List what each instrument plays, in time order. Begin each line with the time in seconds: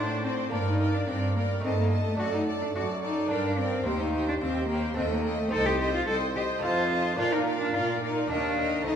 Already playing: lute A2 C4 D4, cello section A2, cello D4, viola section C5, violin section D5 F#5
0.24 cello C4, viola section C5, violin section D5 F#5
0.50 cello section G2, lute G2 A#3 D4, cello A#3, viola section A#4, violin section D5 G5
0.66 cello D#4
0.80 viola section A#4, violin section D5 G5
0.94 cello D4
1.07 cello section G2, lute G2, cello C4, viola section A#4, violin section D5 G5
1.36 cello A#3, viola section A#4, violin section D5 G5
1.59 lute A3 D#4
1.64 cello section G2, lute G2, cello C4, viola section A4, violin section D#5 A5
1.78 cello A#3
1.91 viola section A4, violin section D#5 A5
2.06 cello A3
2.15 lute A3 D4
2.19 lute F#2, cello section F#2, cello F#4, viola section A4, violin section D5 A5
2.34 cello D#4
2.47 viola section A4, violin section D5 A5
2.62 cello D4
2.75 cello section F#2, lute F#2, cello F#4, viola section A4, violin section D5 A5
3.03 cello D#4, viola section A4, violin section D5 A5
3.27 lute A#3 D4
3.31 cello section G2, lute G2, cello D4, viola section A#4, violin section D5 G5
3.58 cello C4, viola section A#4, violin section D5 G5
3.83 lute D#2 C4, cello section D#2, cello A#3, viola section G4, violin section C5 G5
4.00 cello D#4
4.13 viola section G4, violin section C5 G5
4.28 cello D4
4.40 lute D#2, cello section D#2, cello C4, viola section G4, violin section C5 G5
4.68 cello A#3, viola section G4, violin section C5 G5
4.94 cello section D#2, lute D#2 A3 C4, cello C4, viola section A4, violin section D#5 G5
5.10 cello A#3
5.24 viola section A4, violin section D#5 G5
5.39 cello A3
5.49 cello section C2, lute C4 D#4, cello A4, viola section C5, violin section D#5 G5
5.66 cello G4
5.80 viola section C5, violin section D#5 G5
5.94 cello F4
6.07 cello section C2, cello A4, viola section C5, violin section D#5 G5
6.35 cello G4, viola section C5, violin section D#5 G5
6.58 lute A3 C4 D#4
6.62 lute F2, cello section F2, cello F4, viola section C5, violin section D#5 A5
6.91 viola section C5, violin section D#5 A5
7.16 lute A#2 A#3 D4, cello section A#2, cello F4, viola section A#4, violin section D5 F5
7.33 cello D#4
7.47 viola section A#4, violin section D5 F5
7.61 cello D4
7.74 lute A#2, cello section A#2, cello F4, viola section A#4, violin section D5 F5
8.02 cello D#4, viola section A#4, violin section D5 F5
8.27 lute D#2 A#3 D4, cello section D#2, cello D4, viola section A#4, violin section D#5 G5
8.58 viola section A#4, violin section D#5 G5
8.82 lute A3 C4, cello D#4, violin section D#5
8.87 cello section C2, viola section A4, violin section A5